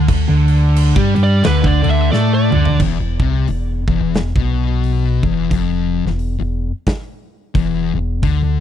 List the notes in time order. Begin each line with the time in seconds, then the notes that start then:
0.08 D2 D3, kick, crash
0.28 D2 D3
0.48 crash
0.76 crash
0.96 G2 G3, kick
1.15 G2 G3, crash
1.23 D5
1.44 D2 D3 B4, snare, crash
1.64 D2 D3 D5, kick
1.83 D2 D3, crash
1.90 E5
2.12 A2 A3 D5, snare
2.34 D5
2.52 D2 D3, mid tom
2.65 floor tom
2.80 E1 E2, kick, crash
3.00 E1 E2
3.20 C2 C3, kick
3.48 E1 E2, open hi-hat
3.88 E1 E2, kick
4.00 E1 E2
4.14 snare, open hi-hat
4.36 B1 B2, kick
4.84 open hi-hat
5.23 E1 E2, kick
5.51 F1 F2, kick, open hi-hat
6.05 E1 E2, snare
6.19 open hi-hat
6.39 E1 E2
6.87 kick, snare, open hi-hat
7.54 E1 E2, kick, open hi-hat
7.94 E1 E2
8.23 D2 D3, kick, open hi-hat
8.43 D2 D3